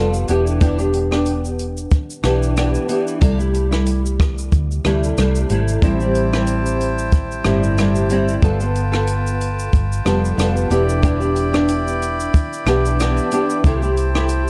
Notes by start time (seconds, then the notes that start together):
Already playing: F1 G3 B3 F4
0.00 A4
0.14 shaker
0.28 E1 E3 B3 D4 G4, closed hi-hat, shaker
0.47 shaker
0.60 E3 B3 D4 G4, kick, closed hi-hat, shaker
0.78 B3 D4 G4, shaker
0.94 closed hi-hat, shaker
1.11 B3 D4 G4, cross-stick, shaker
1.26 closed hi-hat, shaker
1.45 shaker
1.59 closed hi-hat, shaker
1.77 shaker
1.91 kick, closed hi-hat, shaker
2.10 shaker
2.23 B1 E3 B3 D4 G4, cross-stick, closed hi-hat, shaker
2.43 shaker
2.56 E3 B3 D4 G4, cross-stick, closed hi-hat, shaker
2.74 shaker
2.88 E3 B3 D4 G4, closed hi-hat, shaker
3.07 shaker
3.21 C2 C3 G3 A3 E4, kick, closed hi-hat, shaker
3.38 G3 A3 E4, shaker
3.54 closed hi-hat, shaker
3.71 G3 A3 E4, cross-stick, shaker
3.86 closed hi-hat, shaker
4.06 shaker
4.20 kick, cross-stick, closed hi-hat, shaker
4.38 shaker
4.52 D2, kick, closed hi-hat, shaker
4.71 shaker
4.84 D2 C3 G3 A3 E4, cross-stick, closed hi-hat, shaker
5.04 shaker
5.17 C2 C3 G3 A3 E4, cross-stick, closed hi-hat, shaker
5.35 shaker
5.49 G#1 C3 G3 A3 E4, closed hi-hat, shaker
5.68 shaker
5.82 A1 A2 G3 C4 E4 C5 G5 A5, kick, closed hi-hat, shaker
6.00 G3 C4 E4, shaker
6.15 closed hi-hat, shaker
6.33 G3 C4 E4, cross-stick, shaker
6.47 closed hi-hat, shaker
6.66 shaker
6.81 closed hi-hat, shaker
6.98 shaker
7.12 kick, closed hi-hat, shaker
7.31 shaker
7.44 G1 A2 G3 C4 E4, cross-stick, closed hi-hat, shaker
7.63 shaker
7.77 A2 G3 C4 E4, cross-stick, closed hi-hat, shaker
7.95 shaker
8.10 A2 G3 C4 E4, closed hi-hat, shaker
8.28 shaker
8.42 G1 G3 B3 F4 A4 B4, kick, closed hi-hat, shaker
8.60 B3 F4 A4, shaker
8.76 closed hi-hat, shaker
8.92 B3 F4 A4, cross-stick, shaker
9.07 closed hi-hat, shaker
9.27 shaker
9.41 closed hi-hat, shaker
9.59 shaker
9.73 G1, kick, closed hi-hat, shaker
9.92 shaker
10.05 F1 G3 B3 F4 A4, cross-stick, closed hi-hat, shaker
10.25 shaker
10.37 F1 G3 B3 F4 A4, cross-stick, closed hi-hat, shaker
10.56 shaker
10.70 E1 E3 B3 D4 E4 G4 D5 B5, closed hi-hat, shaker
10.89 shaker
11.02 E3 B3 D4 G4, kick, closed hi-hat, shaker
11.20 B3 D4 G4, shaker
11.36 closed hi-hat, shaker
11.52 B3 D4 G4, cross-stick, shaker
11.69 closed hi-hat, shaker
11.88 shaker
12.02 closed hi-hat, shaker
12.20 shaker
12.34 kick, closed hi-hat, shaker
12.53 shaker
12.66 B1 E3 B3 D4 G4, cross-stick, closed hi-hat, shaker
12.85 shaker
12.99 E3 B3 D4 G4, cross-stick, closed hi-hat, shaker
13.17 shaker
13.32 E3 B3 D4 G4, closed hi-hat, shaker
13.50 shaker
13.64 C2 C3 A3 E4 G4 C5 A5, kick, closed hi-hat, shaker
13.82 A3 E4 G4, shaker
13.97 closed hi-hat, shaker
14.15 A3 E4 G4, cross-stick, shaker
14.29 closed hi-hat, shaker